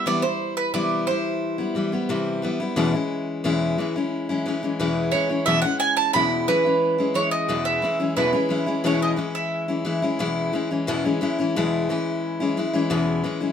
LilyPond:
<<
  \new Staff \with { instrumentName = "Mandolin" } { \time 4/4 \key e \major \tempo 4 = 89 d''16 c''8 b'16 d''8 c''2~ c''8 | r2. r8 cis''8 | e''16 fis''16 gis''16 a''16 b''8 b'4 cis''16 dis''8 e''8. | b'4 cis''16 dis''8 e''2 r16 |
r1 | }
  \new Staff \with { instrumentName = "Steel-string acoustic guitar" } { \clef bass \time 4/4 \key e \major <c e g b e'>16 <g e'>8. <c e g b e'>8 <e g e'>8. <g b e'>16 <e g b e'>16 <g b e'>16 <c e g e'>8 <e g b e'>16 <g b e'>16 | <e, b, e gis cis' e'>16 <e gis cis' e'>8. <e, b, e gis cis' e'>8 <e gis cis' e'>16 <e gis cis' e'>8 <e gis cis' e'>16 <e gis cis' e'>16 <e gis cis' e'>16 <e, b, e gis cis' e'>8 <e gis cis' e'>16 <e gis cis' e'>16 | <e, b, e gis cis' e'>16 <e gis cis' e'>8. <e, b, e gis cis' e'>8 <e gis cis' e'>16 <e gis cis' e'>8 <e gis cis' e'>16 <e gis cis' e'>8 <e, b, e gis cis' e'>8 <e gis cis' e'>16 <e gis cis' e'>16 | <e, b, e gis cis' e'>16 <e gis cis' e'>16 <e gis cis' e'>16 <e gis cis' e'>16 <e, b, e gis cis' e'>8 <e gis cis' e'>8. <e gis cis' e'>16 <e gis cis' e'>16 <e gis cis' e'>16 <e, b, e gis cis' e'>8 <e gis cis' e'>16 <e gis cis' e'>16 |
<e, b, e gis cis' e'>16 <e gis cis' e'>16 <e gis cis' e'>16 <e gis cis' e'>16 <e, b, e gis cis' e'>8 <e gis cis' e'>8. <e gis cis' e'>16 <e gis cis' e'>16 <e gis cis' e'>16 <e, b, e gis cis' e'>8 <e gis cis' e'>16 <e gis cis' e'>16 | }
>>